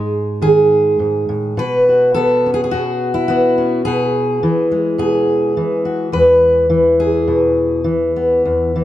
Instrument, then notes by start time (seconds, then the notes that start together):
steel-string acoustic guitar
Already playing: G#2 G#3 D#4 G#4
0.42 D#3 G#4
0.99 G#2
1.29 A2
1.57 B2 B4
1.89 F#4
2.14 B3 A4
2.46 C#4
2.54 G#4
2.64 G#4
2.71 B2 F#4
3.14 E4
3.28 B3 F#4
3.58 C#4
3.85 B2 G#4
4.43 E3
4.71 G#3
4.98 B2 G#4
5.57 E3
5.85 F#4
6.12 E2 B4
6.70 E3
7.00 G#4
7.28 B2
7.84 E3
8.16 B3
8.45 E2
8.76 E3